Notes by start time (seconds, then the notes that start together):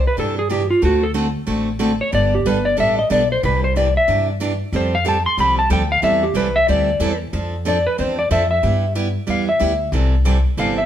0.07 B4
0.17 G2 C3 E3 D4 G4 A4
0.39 G#4
0.50 C3 E3 D4 G4
0.70 F4
0.82 D2 D3 A3 C4 F#4 A4
1.03 A4
1.14 D3 A3 C4 F#4 A4
1.46 A1 D3 A3 C4 F#4 A4
1.79 D3 A3 C4 F#4 A4
2.01 C#5
2.12 G1 G3 B3 D4 A4 D5
2.35 G4
2.45 G1 G3 B3 D4 A4 B4
2.65 D5
2.77 A1 G3 B3 D4 A4 E5
2.99 D#5
3.10 B1 G3 B3 D4 A4 D5
3.32 C5
3.43 C2 C3 E3 D4 G4 B4
3.64 C5
3.76 C3 E3 D4 G4 D5
3.97 E5
4.08 G2 C3 E3 D4 G4
4.40 C3 E3 D4 G4
4.72 F2 F3 G3 C4 G4 A4 C5
4.95 F5
5.05 F3 G3 C4 G4 A4 A5
5.26 C6
5.38 C2 F3 G3 C4 G4 A4 B5
5.59 A5
5.70 D2 F3 G3 C4 G4 A4 G5
5.92 F5
6.02 E2 E3 G3 C4 E4 A4 E5
6.23 G4
6.34 C2 E3 G3 C4 E4 A4 B4
6.56 E5
6.68 D2 E3 G3 C4 E4 A4 D5
7.00 E2 E3 G3 C4 E4 A4
7.33 F2 F3 C4 D4 A4
7.65 F3 C4 D4 A4 D5
7.87 B4
7.98 E2 F3 C4 D4 A4 C5
8.19 D5
8.31 F2 F3 C4 D4 A4 E5
8.51 E5
8.63 G2 G3 B3 E4 G4
8.95 G3 B3 E4 G4
9.27 E2 G3 B3 E4 G4 F5
9.49 E5
9.60 D2 G3 B3 E4 G4
9.92 C2 C3 E3 G3 C4 E4 A4
10.25 C3 E3 G3 C4 E4 A4
10.57 G1 C3 E3 G3 C4 E4 A4 F5
10.78 E5